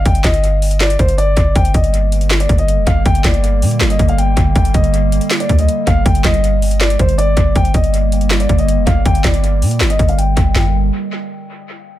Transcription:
<<
  \new Staff \with { instrumentName = "Grand piano" } { \time 4/4 \key g \minor \tempo 4 = 160 g''8 ees''4. d''8 c''8 d''4 | g''8 ees''4.~ ees''16 d''8 ees''8. f''8 | g''8 d''4.~ d''16 ees''8 f''16 g''4 | g''8 ees''4.~ ees''16 d''8 ees''8. f''8 |
g''8 ees''4. d''8 c''8 d''4 | g''8 ees''4.~ ees''16 d''8 ees''8. f''8 | g''8 d''4.~ d''16 ees''8 f''16 g''4 | g''8 r2. r8 | }
  \new Staff \with { instrumentName = "Ambient pad" } { \clef bass \time 4/4 \key g \minor r1 | <d g bes>1~ | <d g bes>1~ | <d g bes>1~ |
<d g bes>1 | <d g bes>1~ | <d g bes>1 | r1 | }
  \new Staff \with { instrumentName = "808-style bass" } { \clef bass \time 4/4 \key g \minor g,,8 g,,2 g,,4 g,,8 | g,,8 g,,2 g,,8. f,,16 g,,8 | g,,8 g,,4 bes,8 g,,8 g,,4 g,,8 | g,,8 g,,4~ g,,16 r8. d,8 r8 g,,8 |
g,,8 g,,2 g,,4 g,,8 | g,,8 g,,2 g,,8. f,,16 g,,8 | g,,8 g,,4 bes,8 g,,8 g,,4 g,,8 | g,,4 r2. | }
  \new DrumStaff \with { instrumentName = "Drums" } \drummode { \time 4/4 <hh bd>16 hh16 <hc hh bd sn>16 hh16 hh8 hho16 hh16 <hc hh sn>16 hh16 <hh bd>16 hh16 hh8 <hh bd>8 | <hh bd>16 hh16 <hh bd>16 hh16 hh8 hh16 hh16 <hc hh sn>16 hh16 <hh bd>16 hh16 hh8 <hh bd>8 | <hh bd>16 hh16 <hc hh bd sn>16 hh16 hh8 hho16 hh16 <hc hh sn>16 hh16 <hh bd>16 hh16 hh8 <hh bd>8 | <hh bd>16 hh16 <hh bd>16 hh16 hh8 hh16 hh16 <hc hh sn>16 hh16 <hh bd>16 hh16 hh8 <hh bd>8 |
<hh bd>16 hh16 <hc hh bd sn>16 hh16 hh8 hho16 hh16 <hc hh sn>16 hh16 <hh bd>16 hh16 hh8 <hh bd>8 | <hh bd>16 hh16 <hh bd>16 hh16 hh8 hh16 hh16 <hc hh sn>16 hh16 <hh bd>16 hh16 hh8 <hh bd>8 | <hh bd>16 hh16 <hc hh bd sn>16 hh16 hh8 hho16 hh16 <hc hh sn>16 hh16 <hh bd>16 hh16 hh8 <hh bd>8 | <hc sn tomfh>4 r4 r4 r4 | }
>>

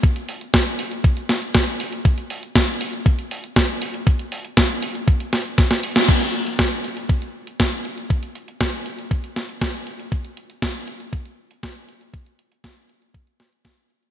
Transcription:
\new DrumStaff \with { instrumentName = "Drums" } \drummode { \time 4/4 \tempo 4 = 119 <hh bd>16 hh16 hho16 hh16 <hh bd sn>16 hh16 hho16 hh16 <hh bd>16 hh16 <hho sn>16 hh16 <hh bd sn>16 hh16 hho16 hh16 | <hh bd>16 hh16 hho16 hh16 <hh bd sn>16 hh16 hho16 hh16 <hh bd>16 hh16 hho16 hh16 <hh bd sn>16 hh16 hho16 hh16 | <hh bd>16 hh16 hho16 hh16 <hh bd sn>16 hh16 hho16 hh16 <hh bd>16 hh16 <hho sn>16 hh16 <hh bd sn>16 <hh sn>16 hho16 <hh sn>16 | <cymc hh bd>16 hh16 hh16 hh16 <hh bd sn>16 hh16 hh16 hh16 <hh bd>16 hh8 hh16 <hh bd sn>16 hh16 hh16 hh16 |
<hh bd>16 hh16 hh16 hh16 <hh bd sn>16 hh16 hh16 hh16 <hh bd>16 hh16 sn16 hh16 <hh bd sn>16 hh16 hh16 hh16 | <hh bd>16 hh16 hh16 hh16 <hh bd sn>16 hh16 hh16 hh16 <hh bd>16 hh8 hh16 <hh bd sn>16 hh16 hh16 hh16 | <hh bd>16 hh16 hh16 hh16 <hh bd sn>16 hh16 hh16 hh16 <hh bd>16 hh16 <hh sn>16 hh16 <hh bd sn>16 hh16 hh16 hh16 | }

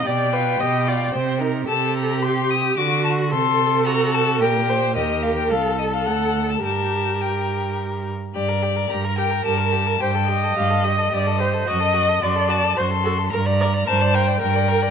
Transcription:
<<
  \new Staff \with { instrumentName = "Violin" } { \time 3/4 \key g \minor \tempo 4 = 109 g''2~ g''8 r8 | a''8 bes''8 c'''8 ees'''8 d'''8 a''8 | c'''4 bes''8 a''8 g''4 | ees''8 f''16 g''16 f''8 ees''16 f''16 fis''8. a''16 |
a''4 g''4 r4 | d''4 bes''8 g''8 a''4 | g''4 f''8 ees''8 ees''4 | dis''4 c'''8 a''8 c'''4 |
bes''4 a''8 g''8 g''4 | }
  \new Staff \with { instrumentName = "Viola" } { \time 3/4 \key g \minor d''8 b'8 ees''8 d''8 c''8 bes'8 | a'4 g'4 fis'4 | a'2 bes'8 c''8 | bes'4 a'4 a'4 |
g'2~ g'8 r8 | r4 bes'2 | c''8 ees''4. d''8 c''8 | dis''4 d''4 c''8 a'8 |
bes'8 d''8 c''4 bes'4 | }
  \new Staff \with { instrumentName = "Violin" } { \time 3/4 \key g \minor g'8 f'8 g'8 f'8 c'8 ees'8 | g'2 fis'4 | a'4 fis'4 g'4 | g'4 a'2 |
bes'2~ bes'8. r16 | g'16 bes'16 g'16 bes'16 g'16 bes'16 g'16 bes'16 g'16 bes'16 g'16 bes'16 | g'16 a'16 g'16 a'16 g'16 a'16 g'16 a'16 g'16 a'16 g'16 a'16 | fis'16 a'16 fis'16 a'16 fis'16 a'16 fis'16 a'16 fis'16 a'16 fis'16 a'16 |
bes'16 d''16 bes'16 d''16 bes'16 d''16 bes'16 d''16 bes'16 d''16 bes'16 d''16 | }
  \new Staff \with { instrumentName = "Cello" } { \clef bass \time 3/4 \key g \minor b,4 b,4 c4 | c2 d4 | c2 bes,4 | ees,4 c,4 d,4 |
g,2~ g,8 r8 | g,4 g,4 g,4 | g,4 g,4 g,4 | fis,4 fis,4 fis,4 |
g,4 g,4 g,4 | }
>>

